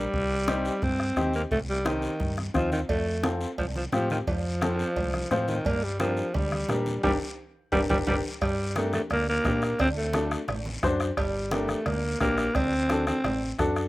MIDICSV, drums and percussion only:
0, 0, Header, 1, 3, 480
1, 0, Start_track
1, 0, Key_signature, -2, "minor"
1, 0, Tempo, 345026
1, 182, Time_signature, 4, 2, 24, 8
1, 11707, Key_signature, -2, "minor"
1, 19314, End_track
2, 0, Start_track
2, 0, Title_t, "Two-headed folk drums"
2, 189, Note_on_c, 9, 36, 78
2, 328, Note_off_c, 9, 36, 0
2, 666, Note_on_c, 9, 37, 87
2, 805, Note_off_c, 9, 37, 0
2, 1147, Note_on_c, 9, 36, 85
2, 1286, Note_off_c, 9, 36, 0
2, 1388, Note_on_c, 9, 37, 76
2, 1527, Note_off_c, 9, 37, 0
2, 1626, Note_on_c, 9, 37, 77
2, 1765, Note_off_c, 9, 37, 0
2, 2103, Note_on_c, 9, 36, 75
2, 2242, Note_off_c, 9, 36, 0
2, 2583, Note_on_c, 9, 37, 89
2, 2722, Note_off_c, 9, 37, 0
2, 3064, Note_on_c, 9, 36, 82
2, 3204, Note_off_c, 9, 36, 0
2, 3309, Note_on_c, 9, 37, 70
2, 3448, Note_off_c, 9, 37, 0
2, 3545, Note_on_c, 9, 36, 72
2, 3548, Note_on_c, 9, 37, 82
2, 3684, Note_off_c, 9, 36, 0
2, 3688, Note_off_c, 9, 37, 0
2, 4025, Note_on_c, 9, 36, 77
2, 4164, Note_off_c, 9, 36, 0
2, 4501, Note_on_c, 9, 37, 87
2, 4640, Note_off_c, 9, 37, 0
2, 4985, Note_on_c, 9, 36, 84
2, 5124, Note_off_c, 9, 36, 0
2, 5468, Note_on_c, 9, 37, 84
2, 5607, Note_off_c, 9, 37, 0
2, 5946, Note_on_c, 9, 36, 74
2, 6085, Note_off_c, 9, 36, 0
2, 6425, Note_on_c, 9, 37, 90
2, 6564, Note_off_c, 9, 37, 0
2, 6907, Note_on_c, 9, 36, 83
2, 7046, Note_off_c, 9, 36, 0
2, 7148, Note_on_c, 9, 37, 74
2, 7287, Note_off_c, 9, 37, 0
2, 7386, Note_on_c, 9, 37, 76
2, 7525, Note_off_c, 9, 37, 0
2, 7868, Note_on_c, 9, 36, 77
2, 8008, Note_off_c, 9, 36, 0
2, 8349, Note_on_c, 9, 37, 86
2, 8488, Note_off_c, 9, 37, 0
2, 8830, Note_on_c, 9, 36, 82
2, 8969, Note_off_c, 9, 36, 0
2, 9073, Note_on_c, 9, 37, 75
2, 9212, Note_off_c, 9, 37, 0
2, 9314, Note_on_c, 9, 37, 75
2, 9453, Note_off_c, 9, 37, 0
2, 9789, Note_on_c, 9, 36, 94
2, 9928, Note_off_c, 9, 36, 0
2, 10747, Note_on_c, 9, 36, 96
2, 10886, Note_off_c, 9, 36, 0
2, 10987, Note_on_c, 9, 36, 101
2, 11126, Note_off_c, 9, 36, 0
2, 11228, Note_on_c, 9, 36, 94
2, 11367, Note_off_c, 9, 36, 0
2, 11708, Note_on_c, 9, 36, 83
2, 11712, Note_on_c, 9, 37, 84
2, 11847, Note_off_c, 9, 36, 0
2, 11851, Note_off_c, 9, 37, 0
2, 12189, Note_on_c, 9, 37, 89
2, 12328, Note_off_c, 9, 37, 0
2, 12430, Note_on_c, 9, 37, 79
2, 12569, Note_off_c, 9, 37, 0
2, 12670, Note_on_c, 9, 37, 85
2, 12809, Note_off_c, 9, 37, 0
2, 13148, Note_on_c, 9, 36, 77
2, 13151, Note_on_c, 9, 37, 84
2, 13287, Note_off_c, 9, 36, 0
2, 13291, Note_off_c, 9, 37, 0
2, 13394, Note_on_c, 9, 37, 80
2, 13533, Note_off_c, 9, 37, 0
2, 13627, Note_on_c, 9, 36, 78
2, 13633, Note_on_c, 9, 37, 78
2, 13767, Note_off_c, 9, 36, 0
2, 13772, Note_off_c, 9, 37, 0
2, 14111, Note_on_c, 9, 37, 92
2, 14250, Note_off_c, 9, 37, 0
2, 14351, Note_on_c, 9, 37, 84
2, 14490, Note_off_c, 9, 37, 0
2, 14588, Note_on_c, 9, 37, 86
2, 14728, Note_off_c, 9, 37, 0
2, 15065, Note_on_c, 9, 36, 83
2, 15066, Note_on_c, 9, 37, 88
2, 15204, Note_off_c, 9, 36, 0
2, 15205, Note_off_c, 9, 37, 0
2, 15309, Note_on_c, 9, 37, 86
2, 15448, Note_off_c, 9, 37, 0
2, 15542, Note_on_c, 9, 37, 83
2, 15544, Note_on_c, 9, 36, 81
2, 15682, Note_off_c, 9, 37, 0
2, 15683, Note_off_c, 9, 36, 0
2, 16027, Note_on_c, 9, 37, 89
2, 16166, Note_off_c, 9, 37, 0
2, 16260, Note_on_c, 9, 37, 80
2, 16399, Note_off_c, 9, 37, 0
2, 16497, Note_on_c, 9, 37, 81
2, 16636, Note_off_c, 9, 37, 0
2, 16979, Note_on_c, 9, 37, 80
2, 16982, Note_on_c, 9, 36, 82
2, 17119, Note_off_c, 9, 37, 0
2, 17121, Note_off_c, 9, 36, 0
2, 17221, Note_on_c, 9, 37, 82
2, 17361, Note_off_c, 9, 37, 0
2, 17456, Note_on_c, 9, 37, 86
2, 17462, Note_on_c, 9, 36, 81
2, 17596, Note_off_c, 9, 37, 0
2, 17602, Note_off_c, 9, 36, 0
2, 17940, Note_on_c, 9, 37, 91
2, 18079, Note_off_c, 9, 37, 0
2, 18185, Note_on_c, 9, 37, 82
2, 18324, Note_off_c, 9, 37, 0
2, 18425, Note_on_c, 9, 37, 86
2, 18564, Note_off_c, 9, 37, 0
2, 18908, Note_on_c, 9, 36, 80
2, 18908, Note_on_c, 9, 37, 79
2, 19047, Note_off_c, 9, 36, 0
2, 19047, Note_off_c, 9, 37, 0
2, 19149, Note_on_c, 9, 37, 84
2, 19288, Note_off_c, 9, 37, 0
2, 19314, End_track
3, 0, Start_track
3, 0, Title_t, "Drums"
3, 190, Note_on_c, 9, 63, 32
3, 190, Note_on_c, 9, 74, 69
3, 329, Note_off_c, 9, 63, 0
3, 329, Note_off_c, 9, 74, 0
3, 665, Note_on_c, 9, 63, 91
3, 668, Note_on_c, 9, 73, 67
3, 805, Note_off_c, 9, 63, 0
3, 807, Note_off_c, 9, 73, 0
3, 905, Note_on_c, 9, 73, 70
3, 1044, Note_off_c, 9, 73, 0
3, 1141, Note_on_c, 9, 74, 69
3, 1151, Note_on_c, 9, 63, 33
3, 1151, Note_on_c, 9, 64, 77
3, 1280, Note_off_c, 9, 74, 0
3, 1290, Note_off_c, 9, 63, 0
3, 1290, Note_off_c, 9, 64, 0
3, 1619, Note_on_c, 9, 73, 65
3, 1629, Note_on_c, 9, 63, 76
3, 1629, Note_on_c, 9, 64, 67
3, 1758, Note_off_c, 9, 73, 0
3, 1768, Note_off_c, 9, 63, 0
3, 1768, Note_off_c, 9, 64, 0
3, 1859, Note_on_c, 9, 73, 66
3, 1998, Note_off_c, 9, 73, 0
3, 2100, Note_on_c, 9, 74, 67
3, 2109, Note_on_c, 9, 63, 33
3, 2109, Note_on_c, 9, 64, 71
3, 2239, Note_off_c, 9, 74, 0
3, 2248, Note_off_c, 9, 63, 0
3, 2248, Note_off_c, 9, 64, 0
3, 2575, Note_on_c, 9, 73, 70
3, 2584, Note_on_c, 9, 63, 99
3, 2714, Note_off_c, 9, 73, 0
3, 2723, Note_off_c, 9, 63, 0
3, 2815, Note_on_c, 9, 73, 70
3, 2954, Note_off_c, 9, 73, 0
3, 3056, Note_on_c, 9, 74, 67
3, 3060, Note_on_c, 9, 63, 33
3, 3060, Note_on_c, 9, 64, 76
3, 3195, Note_off_c, 9, 74, 0
3, 3199, Note_off_c, 9, 63, 0
3, 3199, Note_off_c, 9, 64, 0
3, 3302, Note_on_c, 9, 63, 68
3, 3441, Note_off_c, 9, 63, 0
3, 3537, Note_on_c, 9, 73, 68
3, 3541, Note_on_c, 9, 63, 74
3, 3676, Note_off_c, 9, 73, 0
3, 3680, Note_off_c, 9, 63, 0
3, 3783, Note_on_c, 9, 73, 70
3, 3784, Note_on_c, 9, 63, 66
3, 3922, Note_off_c, 9, 73, 0
3, 3923, Note_off_c, 9, 63, 0
3, 4023, Note_on_c, 9, 56, 104
3, 4030, Note_on_c, 9, 63, 32
3, 4030, Note_on_c, 9, 74, 65
3, 4162, Note_off_c, 9, 56, 0
3, 4169, Note_off_c, 9, 63, 0
3, 4169, Note_off_c, 9, 74, 0
3, 4501, Note_on_c, 9, 63, 101
3, 4504, Note_on_c, 9, 73, 68
3, 4640, Note_off_c, 9, 63, 0
3, 4644, Note_off_c, 9, 73, 0
3, 4738, Note_on_c, 9, 73, 68
3, 4877, Note_off_c, 9, 73, 0
3, 4983, Note_on_c, 9, 56, 84
3, 4983, Note_on_c, 9, 63, 31
3, 4983, Note_on_c, 9, 64, 81
3, 4983, Note_on_c, 9, 74, 69
3, 5122, Note_off_c, 9, 56, 0
3, 5122, Note_off_c, 9, 63, 0
3, 5122, Note_off_c, 9, 64, 0
3, 5122, Note_off_c, 9, 74, 0
3, 5223, Note_on_c, 9, 63, 69
3, 5362, Note_off_c, 9, 63, 0
3, 5458, Note_on_c, 9, 63, 75
3, 5458, Note_on_c, 9, 64, 65
3, 5463, Note_on_c, 9, 73, 67
3, 5597, Note_off_c, 9, 63, 0
3, 5597, Note_off_c, 9, 64, 0
3, 5602, Note_off_c, 9, 73, 0
3, 5704, Note_on_c, 9, 63, 72
3, 5708, Note_on_c, 9, 73, 66
3, 5843, Note_off_c, 9, 63, 0
3, 5847, Note_off_c, 9, 73, 0
3, 5945, Note_on_c, 9, 74, 63
3, 5947, Note_on_c, 9, 63, 35
3, 5947, Note_on_c, 9, 64, 73
3, 5949, Note_on_c, 9, 56, 98
3, 6084, Note_off_c, 9, 74, 0
3, 6086, Note_off_c, 9, 63, 0
3, 6086, Note_off_c, 9, 64, 0
3, 6088, Note_off_c, 9, 56, 0
3, 6420, Note_on_c, 9, 73, 66
3, 6432, Note_on_c, 9, 63, 99
3, 6559, Note_off_c, 9, 73, 0
3, 6571, Note_off_c, 9, 63, 0
3, 6670, Note_on_c, 9, 73, 68
3, 6809, Note_off_c, 9, 73, 0
3, 6905, Note_on_c, 9, 74, 68
3, 6907, Note_on_c, 9, 63, 34
3, 6907, Note_on_c, 9, 64, 80
3, 6911, Note_on_c, 9, 56, 86
3, 7044, Note_off_c, 9, 74, 0
3, 7046, Note_off_c, 9, 63, 0
3, 7046, Note_off_c, 9, 64, 0
3, 7050, Note_off_c, 9, 56, 0
3, 7146, Note_on_c, 9, 63, 72
3, 7285, Note_off_c, 9, 63, 0
3, 7388, Note_on_c, 9, 63, 80
3, 7388, Note_on_c, 9, 64, 67
3, 7390, Note_on_c, 9, 73, 69
3, 7397, Note_on_c, 9, 66, 70
3, 7527, Note_off_c, 9, 63, 0
3, 7527, Note_off_c, 9, 64, 0
3, 7529, Note_off_c, 9, 73, 0
3, 7536, Note_off_c, 9, 66, 0
3, 7621, Note_on_c, 9, 73, 66
3, 7631, Note_on_c, 9, 63, 73
3, 7760, Note_off_c, 9, 73, 0
3, 7770, Note_off_c, 9, 63, 0
3, 7859, Note_on_c, 9, 74, 67
3, 7872, Note_on_c, 9, 63, 36
3, 7872, Note_on_c, 9, 64, 75
3, 7874, Note_on_c, 9, 56, 105
3, 7998, Note_off_c, 9, 74, 0
3, 8012, Note_off_c, 9, 63, 0
3, 8012, Note_off_c, 9, 64, 0
3, 8013, Note_off_c, 9, 56, 0
3, 8341, Note_on_c, 9, 73, 64
3, 8344, Note_on_c, 9, 63, 99
3, 8481, Note_off_c, 9, 73, 0
3, 8483, Note_off_c, 9, 63, 0
3, 8582, Note_on_c, 9, 73, 65
3, 8721, Note_off_c, 9, 73, 0
3, 8824, Note_on_c, 9, 63, 33
3, 8824, Note_on_c, 9, 64, 83
3, 8824, Note_on_c, 9, 74, 66
3, 8828, Note_on_c, 9, 56, 80
3, 8963, Note_off_c, 9, 63, 0
3, 8963, Note_off_c, 9, 64, 0
3, 8963, Note_off_c, 9, 74, 0
3, 8967, Note_off_c, 9, 56, 0
3, 9065, Note_on_c, 9, 63, 68
3, 9204, Note_off_c, 9, 63, 0
3, 9301, Note_on_c, 9, 63, 78
3, 9301, Note_on_c, 9, 64, 65
3, 9305, Note_on_c, 9, 73, 69
3, 9310, Note_on_c, 9, 66, 65
3, 9440, Note_off_c, 9, 63, 0
3, 9440, Note_off_c, 9, 64, 0
3, 9445, Note_off_c, 9, 73, 0
3, 9450, Note_off_c, 9, 66, 0
3, 9544, Note_on_c, 9, 63, 70
3, 9546, Note_on_c, 9, 73, 71
3, 9683, Note_off_c, 9, 63, 0
3, 9685, Note_off_c, 9, 73, 0
3, 9785, Note_on_c, 9, 63, 94
3, 9785, Note_on_c, 9, 74, 92
3, 9789, Note_on_c, 9, 65, 104
3, 9924, Note_off_c, 9, 63, 0
3, 9924, Note_off_c, 9, 74, 0
3, 9928, Note_off_c, 9, 65, 0
3, 10739, Note_on_c, 9, 74, 93
3, 10747, Note_on_c, 9, 65, 100
3, 10748, Note_on_c, 9, 63, 94
3, 10878, Note_off_c, 9, 74, 0
3, 10886, Note_off_c, 9, 65, 0
3, 10888, Note_off_c, 9, 63, 0
3, 10984, Note_on_c, 9, 74, 100
3, 10991, Note_on_c, 9, 63, 97
3, 10991, Note_on_c, 9, 65, 92
3, 11123, Note_off_c, 9, 74, 0
3, 11130, Note_off_c, 9, 63, 0
3, 11130, Note_off_c, 9, 65, 0
3, 11219, Note_on_c, 9, 74, 96
3, 11226, Note_on_c, 9, 63, 89
3, 11228, Note_on_c, 9, 65, 87
3, 11359, Note_off_c, 9, 74, 0
3, 11365, Note_off_c, 9, 63, 0
3, 11367, Note_off_c, 9, 65, 0
3, 11703, Note_on_c, 9, 74, 75
3, 11706, Note_on_c, 9, 63, 36
3, 11709, Note_on_c, 9, 56, 111
3, 11842, Note_off_c, 9, 74, 0
3, 11845, Note_off_c, 9, 63, 0
3, 11848, Note_off_c, 9, 56, 0
3, 12181, Note_on_c, 9, 73, 69
3, 12183, Note_on_c, 9, 63, 102
3, 12320, Note_off_c, 9, 73, 0
3, 12322, Note_off_c, 9, 63, 0
3, 12422, Note_on_c, 9, 73, 68
3, 12428, Note_on_c, 9, 63, 72
3, 12561, Note_off_c, 9, 73, 0
3, 12567, Note_off_c, 9, 63, 0
3, 12659, Note_on_c, 9, 74, 75
3, 12664, Note_on_c, 9, 63, 35
3, 12664, Note_on_c, 9, 64, 80
3, 12670, Note_on_c, 9, 56, 90
3, 12798, Note_off_c, 9, 74, 0
3, 12803, Note_off_c, 9, 63, 0
3, 12803, Note_off_c, 9, 64, 0
3, 12810, Note_off_c, 9, 56, 0
3, 13139, Note_on_c, 9, 63, 77
3, 13139, Note_on_c, 9, 64, 69
3, 13143, Note_on_c, 9, 73, 69
3, 13153, Note_on_c, 9, 66, 72
3, 13278, Note_off_c, 9, 63, 0
3, 13278, Note_off_c, 9, 64, 0
3, 13283, Note_off_c, 9, 73, 0
3, 13292, Note_off_c, 9, 66, 0
3, 13384, Note_on_c, 9, 73, 70
3, 13523, Note_off_c, 9, 73, 0
3, 13621, Note_on_c, 9, 74, 72
3, 13623, Note_on_c, 9, 63, 34
3, 13623, Note_on_c, 9, 64, 71
3, 13628, Note_on_c, 9, 56, 107
3, 13760, Note_off_c, 9, 74, 0
3, 13762, Note_off_c, 9, 63, 0
3, 13762, Note_off_c, 9, 64, 0
3, 13767, Note_off_c, 9, 56, 0
3, 14098, Note_on_c, 9, 63, 103
3, 14106, Note_on_c, 9, 73, 70
3, 14237, Note_off_c, 9, 63, 0
3, 14245, Note_off_c, 9, 73, 0
3, 14347, Note_on_c, 9, 73, 72
3, 14487, Note_off_c, 9, 73, 0
3, 14580, Note_on_c, 9, 63, 33
3, 14580, Note_on_c, 9, 64, 82
3, 14583, Note_on_c, 9, 74, 72
3, 14589, Note_on_c, 9, 56, 85
3, 14719, Note_off_c, 9, 63, 0
3, 14719, Note_off_c, 9, 64, 0
3, 14722, Note_off_c, 9, 74, 0
3, 14728, Note_off_c, 9, 56, 0
3, 14823, Note_on_c, 9, 63, 75
3, 14962, Note_off_c, 9, 63, 0
3, 15062, Note_on_c, 9, 63, 81
3, 15066, Note_on_c, 9, 66, 77
3, 15072, Note_on_c, 9, 73, 68
3, 15201, Note_off_c, 9, 63, 0
3, 15205, Note_off_c, 9, 66, 0
3, 15211, Note_off_c, 9, 73, 0
3, 15303, Note_on_c, 9, 73, 73
3, 15442, Note_off_c, 9, 73, 0
3, 15539, Note_on_c, 9, 63, 35
3, 15548, Note_on_c, 9, 56, 113
3, 15552, Note_on_c, 9, 74, 67
3, 15678, Note_off_c, 9, 63, 0
3, 15687, Note_off_c, 9, 56, 0
3, 15691, Note_off_c, 9, 74, 0
3, 16018, Note_on_c, 9, 63, 99
3, 16022, Note_on_c, 9, 73, 70
3, 16157, Note_off_c, 9, 63, 0
3, 16161, Note_off_c, 9, 73, 0
3, 16252, Note_on_c, 9, 63, 69
3, 16265, Note_on_c, 9, 73, 68
3, 16391, Note_off_c, 9, 63, 0
3, 16404, Note_off_c, 9, 73, 0
3, 16498, Note_on_c, 9, 63, 36
3, 16498, Note_on_c, 9, 64, 79
3, 16498, Note_on_c, 9, 74, 74
3, 16504, Note_on_c, 9, 56, 85
3, 16637, Note_off_c, 9, 63, 0
3, 16637, Note_off_c, 9, 64, 0
3, 16637, Note_off_c, 9, 74, 0
3, 16643, Note_off_c, 9, 56, 0
3, 16978, Note_on_c, 9, 63, 80
3, 16982, Note_on_c, 9, 73, 72
3, 16988, Note_on_c, 9, 66, 73
3, 17117, Note_off_c, 9, 63, 0
3, 17121, Note_off_c, 9, 73, 0
3, 17127, Note_off_c, 9, 66, 0
3, 17218, Note_on_c, 9, 73, 70
3, 17357, Note_off_c, 9, 73, 0
3, 17456, Note_on_c, 9, 63, 35
3, 17456, Note_on_c, 9, 64, 70
3, 17466, Note_on_c, 9, 74, 72
3, 17470, Note_on_c, 9, 56, 107
3, 17595, Note_off_c, 9, 63, 0
3, 17595, Note_off_c, 9, 64, 0
3, 17605, Note_off_c, 9, 74, 0
3, 17609, Note_off_c, 9, 56, 0
3, 17938, Note_on_c, 9, 73, 73
3, 17943, Note_on_c, 9, 63, 100
3, 18077, Note_off_c, 9, 73, 0
3, 18082, Note_off_c, 9, 63, 0
3, 18182, Note_on_c, 9, 73, 70
3, 18188, Note_on_c, 9, 63, 72
3, 18321, Note_off_c, 9, 73, 0
3, 18327, Note_off_c, 9, 63, 0
3, 18424, Note_on_c, 9, 74, 73
3, 18426, Note_on_c, 9, 63, 33
3, 18426, Note_on_c, 9, 64, 85
3, 18433, Note_on_c, 9, 56, 83
3, 18563, Note_off_c, 9, 74, 0
3, 18565, Note_off_c, 9, 63, 0
3, 18565, Note_off_c, 9, 64, 0
3, 18573, Note_off_c, 9, 56, 0
3, 18900, Note_on_c, 9, 73, 68
3, 18908, Note_on_c, 9, 63, 81
3, 18913, Note_on_c, 9, 66, 70
3, 19039, Note_off_c, 9, 73, 0
3, 19047, Note_off_c, 9, 63, 0
3, 19052, Note_off_c, 9, 66, 0
3, 19145, Note_on_c, 9, 73, 70
3, 19284, Note_off_c, 9, 73, 0
3, 19314, End_track
0, 0, End_of_file